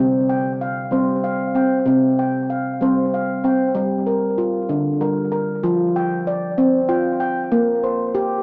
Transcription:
0.00 0.75 C3 medium
0.00 0.60 C4 medium
0.00 0.29 C5 medium
0.00 0.28 G5 medium
0.29 1.24 G5 medium
0.61 1.23 F5 medium
0.91 1.43 G3 medium
0.91 1.54 C4 medium
0.91 1.86 C5 medium
1.24 2.18 F5 medium
1.55 1.81 C4 medium
1.55 2.18 G5 medium
1.86 2.64 C3 medium
1.86 2.50 C4 medium
2.19 3.13 G5 medium
2.50 3.13 F5 medium
2.81 3.33 G3 medium
2.81 3.43 C4 medium
2.81 3.76 C5 medium
3.14 4.08 F5 medium
3.44 3.70 C4 medium
3.44 4.07 G5 medium
3.75 4.53 G3 loud
4.07 5.00 A#4 medium
4.38 5.01 F4 medium
4.69 5.47 D3 medium
5.01 5.64 G3 medium
5.01 5.31 A#4 medium
5.32 5.95 A#4 medium
5.64 6.41 F3 loud
5.64 6.27 F4 medium
5.96 6.87 G5 medium
6.27 6.90 D5 medium
6.58 7.36 C4 medium
6.89 7.52 F4 medium
6.89 7.19 G5 medium
7.20 7.83 G5 medium
7.52 8.29 A#3 loud
7.84 8.43 C5 medium
8.15 8.43 G4 medium

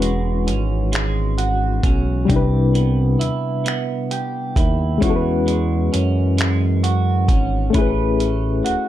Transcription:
0.00 0.51 E1 loud
0.00 3.07 E3 medium
0.00 2.23 G#3 medium
0.00 0.91 G#3 soft
0.00 0.47 C#4 soft
0.00 2.24 C#4 medium
0.00 2.26 E4 medium
0.00 1.37 F#4 soft
0.00 2.27 F#4 medium
0.00 0.50 B4 soft
0.00 2.28 B4 medium
0.00 closed hi-hat soft
0.47 1.81 G#1 medium
0.47 1.83 C#4 soft
0.47 closed hi-hat medium
0.92 2.38 G#3 medium
0.92 finger snap medium
0.92 closed hi-hat medium
1.38 2.29 F#4 medium
1.38 closed hi-hat soft
1.83 2.26 B1 medium
1.83 2.38 C#4 medium
1.83 kick medium
1.83 closed hi-hat medium
2.25 4.97 C3 medium
2.25 5.01 C3 medium
2.25 4.96 G3 medium
2.25 4.10 G4 soft
2.30 3.17 C2 loud
2.30 4.99 D4 medium
2.30 5.00 E4 medium
2.30 kick medium
2.30 closed hi-hat medium
2.36 5.01 B4 medium
2.74 3.64 B3 medium
2.74 closed hi-hat soft
3.19 3.30 D#2 soft
3.19 4.56 E4 medium
3.19 closed hi-hat medium
3.65 5.46 B3 medium
3.65 finger snap medium
3.65 closed hi-hat medium
4.11 5.02 G4 medium
4.11 closed hi-hat soft
4.56 4.98 D#2 medium
4.56 5.92 E4 medium
4.56 kick medium
4.56 closed hi-hat medium
4.98 8.52 E3 medium
4.98 7.69 G#3 medium
4.98 7.70 C#4 medium
5.02 5.89 E2 medium
5.02 7.72 E4 medium
5.02 6.82 F#4 medium
5.02 kick medium
5.02 closed hi-hat medium
5.06 7.73 F#4 medium
5.06 5.12 A4 medium
5.16 7.78 B4 medium
5.47 6.38 G#3 medium
5.47 closed hi-hat soft
5.93 7.31 F#2 medium
5.93 7.28 C#4 medium
5.93 closed hi-hat medium
6.38 7.73 G#3 medium
6.38 finger snap medium
6.38 closed hi-hat medium
6.83 7.84 F#4 medium
6.83 closed hi-hat soft
7.28 7.71 G#1 medium
7.28 8.19 C#4 soft
7.28 kick medium
7.28 closed hi-hat medium
7.70 8.88 A3 medium
7.70 8.88 C#4 medium
7.74 8.62 A1 medium
7.74 8.88 E4 medium
7.74 8.88 B4 medium
7.74 kick medium
7.74 closed hi-hat medium
7.78 8.88 G#4 medium
7.78 8.88 B4 medium
8.19 8.88 C#4 soft
8.19 closed hi-hat soft
8.64 8.76 D#1 soft
8.64 8.88 F#4 medium
8.64 closed hi-hat medium

